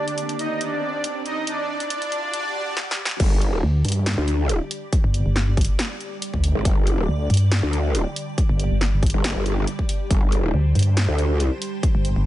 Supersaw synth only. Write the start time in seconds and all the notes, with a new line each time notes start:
Already playing: D4 D5
0.39 D#4 D#5
0.61 D4 D5
1.26 D#4 D#5
1.47 D4 D5
1.90 D4 D5
2.34 D4 D5
2.55 D4 D5